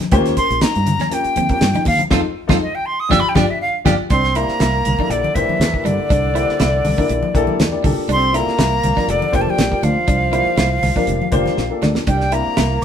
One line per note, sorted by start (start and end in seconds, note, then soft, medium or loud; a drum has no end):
0.00 muted fingered electric bass stroke soft
0.00 snare soft
0.00 closed hi-hat soft
0.00 high conga medium
0.12 0.35 D#2 medium
0.12 0.32 A#3 loud
0.12 0.32 C#4 loud
0.12 0.32 F4 loud
0.12 0.32 G4 loud
0.12 0.32 G4 medium
0.12 0.32 C5 loud
0.12 kick loud
0.12 closed hi-hat medium
0.26 snare soft
0.26 closed hi-hat soft
0.36 0.95 A#3 medium
0.36 0.95 C#4 medium
0.36 0.96 F4 medium
0.36 0.96 G4 medium
0.36 0.96 A#4 medium
0.36 0.63 C6 loud
0.36 kick medium
0.36 closed hi-hat medium
0.50 0.61 A#1 medium
0.50 closed hi-hat soft
0.61 0.82 D#4 medium
0.61 1.15 A#5 medium
0.61 muted fingered electric bass stroke soft
0.61 snare loud
0.61 closed hi-hat medium
0.75 1.00 G2 medium
0.75 closed hi-hat soft
0.86 closed hi-hat medium
0.86 low conga medium
0.99 1.11 D#2 medium
0.99 1.20 C#4 medium
0.99 snare soft
0.99 closed hi-hat soft
0.99 high conga medium
1.10 1.31 A#3 medium
1.10 1.31 C#4 medium
1.10 1.31 F4 medium
1.10 1.31 G4 medium
1.10 1.31 A#4 medium
1.10 1.86 G5 medium
1.10 closed hi-hat medium
1.25 muted fingered electric bass stroke soft
1.25 closed hi-hat soft
1.35 1.49 D#2 medium
1.35 1.56 C4 medium
1.35 1.42 G4 soft
1.35 1.43 C5 soft
1.35 closed hi-hat medium
1.35 high conga medium
1.49 1.78 A#3 medium
1.49 1.78 C#4 medium
1.49 1.79 F4 medium
1.49 1.78 G4 medium
1.49 1.79 A#4 medium
1.49 kick medium
1.49 closed hi-hat soft
1.61 1.74 G2 medium
1.61 snare loud
1.61 closed hi-hat medium
1.74 1.95 D#4 medium
1.74 muted fingered electric bass stroke soft
1.74 closed hi-hat soft
1.74 high conga medium
1.85 1.99 D#2 medium
1.85 2.02 F5 loud
1.85 kick medium
1.85 open hi-hat medium
1.85 low conga medium
1.99 closed hi-hat soft
1.99 high conga medium
2.10 2.21 F2 medium
2.10 2.20 C4 loud
2.10 2.19 D#4 loud
2.10 2.20 D#4 medium
2.10 2.20 F4 medium
2.10 2.20 A4 loud
2.10 kick medium
2.10 snare medium
2.10 high conga medium
2.47 2.58 F2 medium
2.47 2.57 C4 medium
2.47 2.56 D#4 loud
2.47 2.57 D#4 medium
2.47 2.56 F4 medium
2.47 2.57 F4 medium
2.47 2.56 A4 loud
2.47 kick medium
2.47 snare medium
2.47 high conga loud
2.63 2.77 D#5 medium
2.75 2.87 G5 medium
2.86 3.01 C6 medium
3.00 3.12 D#6 loud
3.09 3.21 G1 medium
3.09 3.18 D4 medium
3.09 3.20 D4 medium
3.09 3.18 F4 loud
3.09 3.20 F4 medium
3.09 3.18 G4 medium
3.09 3.20 G4 medium
3.09 3.21 E6 loud
3.09 kick medium
3.09 snare medium
3.09 high conga loud
3.20 3.30 B5 loud
3.29 3.37 G5 medium
3.35 3.46 G1 medium
3.35 3.44 D4 loud
3.35 3.45 D4 medium
3.35 3.44 F4 loud
3.35 3.45 F4 medium
3.35 3.44 G4 loud
3.35 3.45 G4 medium
3.35 3.52 D5 medium
3.35 kick medium
3.35 snare medium
3.35 high conga loud
3.50 3.61 E5 medium
3.61 3.76 F5 medium
3.85 3.95 G1 loud
3.85 3.94 D4 loud
3.85 3.94 D4 medium
3.85 3.94 F4 medium
3.85 3.94 G4 medium
3.85 3.94 G4 loud
3.85 kick medium
3.85 snare medium
3.85 high conga loud
4.10 4.46 C2 medium
4.10 4.38 C4 medium
4.10 4.30 D4 medium
4.10 4.38 C6 medium
4.10 kick medium
4.10 closed hi-hat medium
4.24 snare soft
4.35 4.55 A#3 medium
4.35 5.14 A#3 medium
4.35 4.55 D4 medium
4.35 4.55 E4 medium
4.35 4.55 G4 medium
4.35 4.56 C5 medium
4.35 5.12 A#5 medium
4.35 closed hi-hat medium
4.48 muted fingered electric bass stroke soft
4.48 snare soft
4.60 4.84 C2 medium
4.60 4.80 E4 medium
4.60 4.67 G4 soft
4.60 4.67 A#4 soft
4.60 snare medium
4.60 closed hi-hat medium
4.85 4.98 C2 medium
4.85 closed hi-hat medium
4.85 low conga medium
4.99 5.27 A#3 medium
4.99 5.27 D4 medium
4.99 5.19 D4 medium
4.99 5.28 E4 medium
4.99 5.28 G4 medium
4.99 5.28 A4 medium
4.99 kick medium
4.99 high conga medium
5.10 5.22 A#1 medium
5.10 5.39 D3 medium
5.10 5.36 D5 medium
5.10 closed hi-hat medium
5.24 high conga medium
5.35 5.48 A#1 medium
5.35 5.89 E3 medium
5.35 5.64 A#3 medium
5.35 5.64 D4 medium
5.35 5.65 E4 medium
5.35 5.65 G4 medium
5.35 5.65 C5 medium
5.35 5.87 E5 medium
5.35 kick medium
5.35 closed hi-hat medium
5.49 muted fingered electric bass stroke soft
5.49 high conga medium
5.60 5.72 E2 medium
5.60 snare loud
5.60 closed hi-hat medium
5.73 6.21 A#3 medium
5.73 6.22 D4 medium
5.73 6.22 E4 medium
5.73 6.22 G4 medium
5.73 6.22 A#4 medium
5.73 kick medium
5.85 5.97 G2 medium
5.85 7.85 D3 medium
5.85 6.05 D4 medium
5.85 7.84 D5 medium
5.85 closed hi-hat soft
5.85 low conga medium
5.98 muted fingered electric bass stroke soft
6.10 6.46 C2 medium
6.10 6.30 D4 medium
6.10 kick loud
6.10 closed hi-hat medium
6.33 6.54 A#3 medium
6.33 6.54 D4 medium
6.33 6.54 E4 medium
6.33 6.55 E4 medium
6.33 6.54 G4 medium
6.33 6.54 C5 medium
6.33 closed hi-hat medium
6.49 muted fingered electric bass stroke soft
6.49 snare soft
6.58 6.83 C2 medium
6.58 6.80 E4 medium
6.58 6.65 G4 soft
6.58 6.66 C5 soft
6.58 snare medium
6.58 closed hi-hat medium
6.85 6.97 C2 medium
6.85 open hi-hat medium
6.85 low conga medium
6.96 7.26 A#3 medium
6.96 7.26 D4 medium
6.96 7.18 D4 medium
6.96 7.27 E4 medium
6.96 7.26 G4 medium
6.96 7.27 A#4 medium
6.96 kick medium
6.96 high conga medium
7.09 7.22 A#1 medium
7.09 closed hi-hat medium
7.23 high conga medium
7.34 7.47 A#1 medium
7.34 7.64 A#3 loud
7.34 7.64 D4 medium
7.34 7.64 E4 medium
7.34 7.64 G4 loud
7.34 7.64 A4 loud
7.34 kick medium
7.34 closed hi-hat medium
7.47 muted fingered electric bass stroke soft
7.47 high conga medium
7.59 7.72 E2 medium
7.59 snare loud
7.59 closed hi-hat medium
7.71 7.81 A#3 medium
7.71 7.82 D4 medium
7.71 7.84 E4 medium
7.71 7.83 G4 medium
7.71 7.84 D5 medium
7.83 7.97 C2 medium
7.83 8.24 A#3 medium
7.83 8.24 D4 medium
7.83 8.04 D4 medium
7.83 8.24 F4 medium
7.83 8.25 G4 medium
7.83 8.25 A4 medium
7.83 kick medium
7.83 open hi-hat medium
7.83 low conga medium
7.97 muted fingered electric bass stroke soft
8.09 8.45 C2 medium
8.09 8.39 C4 medium
8.09 8.29 D4 medium
8.09 8.37 C6 loud
8.09 closed hi-hat medium
8.32 8.53 A#3 medium
8.32 8.53 D4 medium
8.32 8.54 E4 medium
8.32 8.53 F4 medium
8.32 8.54 G4 medium
8.32 8.54 A4 medium
8.32 9.12 A#5 loud
8.32 closed hi-hat medium
8.37 9.12 A#3 medium
8.47 muted fingered electric bass stroke soft
8.47 snare soft
8.58 8.82 C2 medium
8.58 8.78 E4 medium
8.58 snare loud
8.58 closed hi-hat medium
8.83 8.96 C2 medium
8.83 closed hi-hat medium
8.83 low conga medium
8.95 9.25 A#3 medium
8.95 9.25 D4 medium
8.95 9.16 D4 medium
8.95 9.25 F4 medium
8.95 9.26 G4 medium
8.95 9.26 A#4 medium
8.95 muted fingered electric bass stroke soft
8.95 kick medium
8.95 snare soft
8.95 high conga medium
9.08 9.21 F1 medium
9.08 9.37 D3 medium
9.08 9.37 D5 loud
9.08 closed hi-hat medium
9.22 high conga medium
9.32 9.46 F1 medium
9.32 9.44 G3 medium
9.32 9.62 A#3 medium
9.32 9.62 D4 medium
9.32 9.62 F4 medium
9.32 9.62 G4 medium
9.32 9.63 C5 loud
9.32 9.43 G5 medium
9.32 kick medium
9.32 closed hi-hat medium
9.41 9.51 A3 medium
9.41 9.52 A5 medium
9.46 9.85 G3 medium
9.46 9.85 G5 medium
9.46 muted fingered electric bass stroke soft
9.46 high conga medium
9.58 9.71 A#1 medium
9.58 snare loud
9.58 closed hi-hat medium
9.69 10.19 A#3 medium
9.69 10.19 D4 medium
9.69 10.19 F4 medium
9.69 10.19 G4 medium
9.69 10.20 A#4 medium
9.69 kick medium
9.83 9.96 D2 medium
9.83 11.83 F3 medium
9.83 10.03 D4 medium
9.83 11.83 F5 medium
9.83 closed hi-hat medium
9.83 low conga medium
9.97 muted fingered electric bass stroke soft
10.08 10.44 C2 medium
10.08 10.27 D4 medium
10.08 kick loud
10.08 closed hi-hat medium
10.31 10.52 A#3 medium
10.31 10.52 D4 medium
10.31 10.52 E4 medium
10.31 10.52 F4 medium
10.31 10.52 G4 medium
10.31 10.53 C5 medium
10.31 closed hi-hat medium
10.31 high conga soft
10.46 muted fingered electric bass stroke soft
10.56 10.81 C2 medium
10.56 10.77 E4 medium
10.56 10.64 G4 soft
10.56 snare loud
10.56 closed hi-hat medium
10.82 10.95 C2 medium
10.82 open hi-hat medium
10.82 low conga medium
10.96 11.25 A#3 medium
10.96 11.25 D4 medium
10.96 11.16 D4 medium
10.96 11.25 F4 medium
10.96 11.25 G4 medium
10.96 11.25 A#4 medium
10.96 kick medium
10.96 high conga medium
11.07 11.20 F1 medium
11.07 closed hi-hat medium
11.07 high conga medium
11.22 high conga medium
11.31 11.45 F1 medium
11.31 11.61 A#3 loud
11.31 11.62 D4 loud
11.31 11.62 F4 medium
11.31 11.62 G4 loud
11.31 11.62 C5 loud
11.31 kick medium
11.31 closed hi-hat medium
11.31 low conga medium
11.46 muted fingered electric bass stroke soft
11.46 snare soft
11.46 high conga medium
11.57 11.70 A#1 medium
11.57 snare medium
11.70 12.07 A#3 medium
11.70 12.07 D4 medium
11.70 12.07 F4 medium
11.70 12.07 G4 medium
11.70 12.08 A4 medium
11.82 11.95 D2 medium
11.82 12.02 D4 medium
11.82 snare medium
11.82 low conga medium
11.95 muted fingered electric bass stroke soft
11.95 snare medium
12.07 12.43 C2 medium
12.07 12.35 G3 medium
12.07 12.27 D4 medium
12.07 12.35 G5 medium
12.07 kick loud
12.07 closed hi-hat medium
12.21 snare soft
12.31 12.85 A#3 medium
12.31 12.51 C4 medium
12.31 12.52 D4 medium
12.31 12.52 E4 medium
12.31 12.52 G4 medium
12.31 12.52 A#4 medium
12.31 12.84 A#5 medium
12.31 closed hi-hat medium
12.47 muted fingered electric bass stroke soft
12.56 12.81 C2 medium
12.56 12.77 E4 medium
12.56 12.63 G4 soft
12.56 12.64 A#4 soft
12.56 snare loud
12.56 closed hi-hat medium